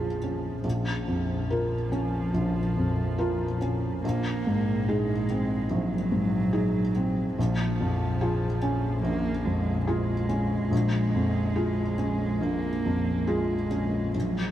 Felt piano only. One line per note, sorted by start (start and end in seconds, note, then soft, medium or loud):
0.00 0.59 A#1 soft
0.00 0.67 F2 soft
0.00 0.24 C#4 soft
0.00 0.67 F4 soft
0.00 0.67 G#4 soft
0.24 0.65 C#4 soft
0.64 2.29 A#1 soft
1.08 1.75 F2 soft
1.50 1.88 F4 soft
1.50 1.88 A#4 soft
1.92 2.59 C#4 soft
2.34 4.00 A#1 soft
2.77 3.44 F2 soft
3.18 3.57 F4 soft
3.18 3.57 A#4 soft
3.61 4.04 C#4 soft
4.04 5.65 A#1 medium
4.47 5.12 G#2 soft
4.88 5.24 D#4 soft
4.88 5.25 G#4 soft
5.30 5.95 C4 soft
5.71 7.35 A#1 soft
6.12 6.79 G#2 soft
6.53 6.91 D#4 soft
6.53 6.91 G#4 medium
6.95 7.38 C4 soft
7.38 9.00 A#1 medium
7.80 8.46 F2 soft
8.21 8.58 F4 soft
8.21 8.58 G#4 medium
8.62 9.29 C#4 soft
9.03 10.67 A#1 medium
9.46 10.13 F2 soft
9.87 10.26 F4 soft
9.87 10.25 G#4 medium
10.29 10.71 C#4 soft
10.71 12.38 A#1 medium
11.14 11.82 F2 soft
11.56 11.95 F4 soft
11.56 11.95 G#4 soft
11.98 12.67 C#4 soft
12.40 14.10 A#1 soft
12.85 13.54 F2 soft
13.27 13.67 F4 soft
13.27 13.67 G#4 soft
13.71 14.14 C#4 soft
14.15 14.51 A#1 soft